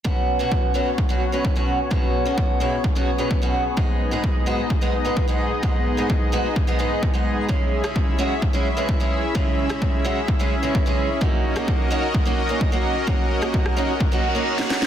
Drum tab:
SD |----------------|----------------|----------------|----------------|
BD |o---o---o---o---|o---o---o---o---|o---o---o---o---|o---o---o---o---|

SD |---r------------|---r------------|---r------------|---r-r-------ooo|
BD |o---o---o---o---|o---o---o---o---|o---o---o---o---|o---o---o-------|